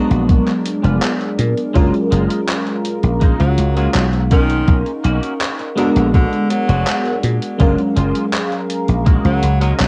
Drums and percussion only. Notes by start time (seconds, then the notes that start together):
0.11 closed hi-hat
0.29 kick, closed hi-hat
0.48 clap, closed hi-hat
0.65 closed hi-hat
0.84 closed hi-hat
1.02 clap, closed hi-hat
1.21 closed hi-hat
1.39 closed hi-hat
1.57 closed hi-hat
1.75 kick, closed hi-hat
1.94 closed hi-hat
2.12 closed hi-hat
2.30 closed hi-hat
2.48 clap, closed hi-hat
2.67 closed hi-hat
2.85 closed hi-hat
3.03 closed hi-hat
3.21 kick, closed hi-hat
3.40 closed hi-hat
3.58 closed hi-hat
3.77 closed hi-hat
3.94 clap, closed hi-hat
4.13 closed hi-hat
4.31 kick, closed hi-hat
4.50 closed hi-hat
4.68 kick, closed hi-hat
4.86 closed hi-hat
5.04 closed hi-hat
5.23 closed hi-hat
5.41 clap, closed hi-hat
5.59 closed hi-hat
5.78 closed hi-hat
5.96 closed hi-hat
6.14 kick, closed hi-hat
6.33 closed hi-hat
6.50 closed hi-hat
6.69 closed hi-hat
6.87 clap, closed hi-hat
7.05 closed hi-hat
7.23 closed hi-hat
7.42 closed hi-hat
7.60 kick, closed hi-hat
7.78 closed hi-hat
7.97 closed hi-hat
8.15 closed hi-hat
8.33 clap, closed hi-hat
8.52 closed hi-hat
8.70 closed hi-hat
8.88 closed hi-hat
9.06 kick, closed hi-hat
9.25 closed hi-hat
9.43 closed hi-hat
9.61 closed hi-hat
9.80 clap, closed hi-hat